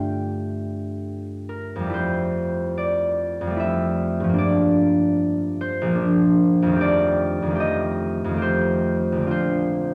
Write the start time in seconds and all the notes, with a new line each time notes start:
Already playing: G2 D3 A3 F4 D5 F5 G5
1.49 A#4
1.76 F2
1.80 G3
1.86 A3 E4
1.94 C5
2.78 D5
3.41 F2
3.47 G3 A3
3.56 E4 E5
4.20 G2 F3
4.29 A#3
4.34 D4
4.38 D5
5.61 C5
5.81 A#1
5.86 F3
5.91 A#3 D4
6.62 F2
6.67 D#3
6.72 A3
6.76 G4
6.81 D5
7.42 F2
7.46 D#3
7.51 A3
7.55 G4
7.60 D#5
8.24 F2
8.29 D#3
8.34 A3 G4
8.42 C5
9.12 A#1
9.16 D3
9.21 C4
9.27 F4
9.31 C5